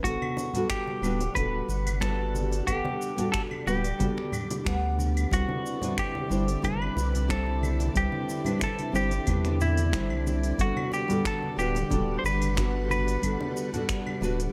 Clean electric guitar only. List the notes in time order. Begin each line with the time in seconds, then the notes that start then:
0.04 F#4
0.70 G4
1.35 B4
2.01 A4
2.67 G4
3.32 A4
3.67 G4
5.33 F#4
5.99 G4
6.65 B4
7.31 A4
7.97 G4
8.64 A4
8.96 G4
9.62 E4
10.61 F#4
10.94 G4
11.27 A4
11.59 G4
12.19 C5
12.26 B4
12.91 B4